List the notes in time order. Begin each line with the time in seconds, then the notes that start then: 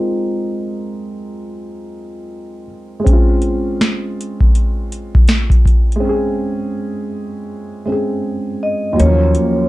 Already playing: G#3 C4 D#4 F4 A#4
3.00 G#3
3.04 C4, kick, closed hi-hat
3.09 C#4
3.13 F4
3.42 closed hi-hat
3.81 snare, closed hi-hat
4.21 closed hi-hat
4.41 kick
4.55 closed hi-hat
4.92 closed hi-hat
5.15 kick
5.28 snare, closed hi-hat
5.50 kick, closed hi-hat
5.66 kick, closed hi-hat
5.92 G#3, closed hi-hat
6.00 C4
6.05 C#4
6.09 G#4
7.85 G#3 C4
7.90 C#4 G#4
8.63 D#5
8.93 D#2 F#3
8.99 D#2 A#3 C#4 C#5, closed hi-hat
9.06 F3
9.35 closed hi-hat